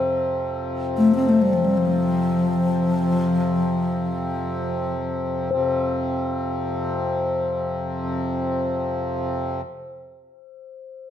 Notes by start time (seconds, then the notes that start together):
Already playing: F2 C3 C5
0.97 A3
1.15 C4
1.29 A3
1.42 G3
1.53 F3
1.65 G3
1.78 F3
5.51 F2 C3 C5